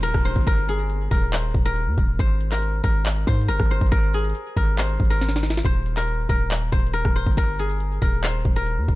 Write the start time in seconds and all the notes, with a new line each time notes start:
Already playing: D#1 C5, downlifter
0.03 A#4, closed hi-hat
0.14 D#1, kick, cross-stick
0.25 C5, closed hi-hat
0.30 closed hi-hat
0.36 G1, kick, closed hi-hat
0.41 closed hi-hat
0.47 A#4, kick, closed hi-hat
0.68 G#4, closed hi-hat
0.79 closed hi-hat
0.90 closed hi-hat
1.11 D#1 A#4, kick, open hi-hat
1.33 C5, clap, closed hi-hat
1.54 D#1, kick, closed hi-hat
1.66 A#4
1.76 closed hi-hat
1.87 D#2
1.98 D#1, kick, closed hi-hat
2.19 G#1 C5, kick, closed hi-hat
2.41 closed hi-hat
2.52 A#4, clap
2.62 closed hi-hat
2.84 G#1 A#4, kick, closed hi-hat
3.06 clap, closed hi-hat
3.16 closed hi-hat
3.27 G#2 C5, kick, closed hi-hat
3.34 closed hi-hat
3.42 closed hi-hat
3.48 G1 A#4, closed hi-hat
3.60 G#1, kick, cross-stick
3.70 C5, closed hi-hat
3.76 closed hi-hat
3.81 G#1, kick, closed hi-hat
3.87 closed hi-hat
3.92 G#1 A#4, kick, closed hi-hat
4.14 G#4, closed hi-hat
4.19 closed hi-hat
4.24 closed hi-hat
4.30 closed hi-hat
4.35 closed hi-hat
4.57 G#1 A#4, kick, closed hi-hat
4.78 C5, clap, closed hi-hat
5.00 G#1, kick, closed hi-hat
5.05 closed hi-hat
5.10 A#4, closed hi-hat
5.16 closed hi-hat
5.21 snare, closed hi-hat
5.29 snare, closed hi-hat
5.36 snare, closed hi-hat
5.43 snare, closed hi-hat, open hi-hat
5.50 snare, closed hi-hat
5.57 snare, closed hi-hat
5.65 D#1 C5, kick, closed hi-hat
5.86 closed hi-hat
5.97 A#4, clap
6.08 closed hi-hat
6.29 D#1 A#4, kick, closed hi-hat
6.51 clap, closed hi-hat
6.62 closed hi-hat
6.72 D#1 C5, kick, closed hi-hat
6.80 closed hi-hat
6.87 closed hi-hat
6.93 A#4, closed hi-hat
7.05 D#1, kick, cross-stick
7.16 C5, closed hi-hat
7.21 closed hi-hat
7.26 G1, kick, closed hi-hat
7.32 closed hi-hat
7.37 A#4, kick, closed hi-hat
7.59 G#4, closed hi-hat
7.70 closed hi-hat
7.80 closed hi-hat
8.02 D#1 A#4, kick, open hi-hat
8.23 C5, clap, closed hi-hat
8.45 D#1, kick, closed hi-hat
8.56 A#4
8.67 closed hi-hat
8.78 D#2
8.88 D#1, kick, closed hi-hat